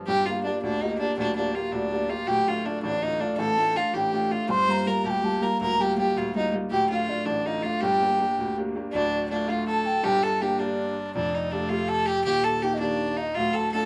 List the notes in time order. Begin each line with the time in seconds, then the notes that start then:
Already playing: G2 F3
0.07 G1 G2 G4 G5
0.26 A#3 F4 G4 F5
0.44 A#3 D4 F4 G4 D5
0.62 D2 D4 D5
0.81 A#3 D#4 F4 G4 D#5
0.99 A#3 D4 F4 G4 D5
1.17 D1 D2 D4 D5
1.36 A#3 D4 F4 G4 D5
1.55 A#3 F4 G4 F5
1.72 D2 D4 D5
1.91 A#3 F4 G4
2.09 A#3 F4 G4 F5
2.27 D1 D2 G4 G5
2.46 A3 D4 F4 F5 G5
2.65 A3 D4 F4 D5
2.83 A1 D4 D5
3.02 A3 D4 D#4 F4 D#5
3.20 A3 D4 F4 D5
3.38 A1 A4 A5
3.57 A3 D4 F4
3.76 A3 D4 F4 F5
3.94 A1 G4 G5
4.13 A3 D4 F4 G5
4.31 A3 D4 F4 F5
4.49 G1 G2 C5 C6
4.68 G3 A#3 F4 A#5
4.86 G3 A#3 F4 A#4 A#5
5.04 D2 G4 A5
5.10 G5
5.23 G3 A#3 F4 A5
5.41 G3 A#3 F4 A#4 A#5
5.60 D1 D2 A#4 A#5
5.80 G3 A#3 F4 G4 G5
5.97 G3 A#3 F4 G4 G5
6.16 D2 F4 F5
6.35 G3 A#3 D#4 F4 D#5
6.53 G3 A#3 F4
6.70 D1 D2 G4 G5
6.90 A3 D4 F4 F5
7.09 A3 D4 F4 D5
7.26 A1 D4 D5
7.46 A3 D4 D#4 F4 D#5
7.63 A3 D4 F4 F5
7.81 G1 G2 G4 G5
8.02 A#3 D4 G4
8.19 A#3 D4 G4
8.38 D2
8.57 A#3 D4 G4
8.75 A#3 D4 G4
8.91 D1 D2 D4 D5
9.29 A3 D4 F4 D5
9.47 A3 D4 F4 F5
9.67 A4 A5
9.85 G5
10.04 G1 G2 G4 A5
10.08 G5
10.23 A4 A5
10.41 A#3 D4 G4 G5
10.59 A#3 D4 G4 D5
11.13 F1 F2 D4 D5
11.34 D#4
11.51 A3 D4 F4 G4 D5
11.69 A3 F4 G4 F5
11.88 A4 A5
12.06 G4 G5
12.24 D#1 D#2 G4 G5
12.44 A4 A5
12.62 A#3 D#4 G4 G5
12.74 D#5
12.79 D#3 A#3 D4 G4 D5
13.17 D#4 F5
13.22 D#5
13.35 D1 D2 F4 F5
13.53 A4 A5
13.72 A3 D4 F4 A4 A5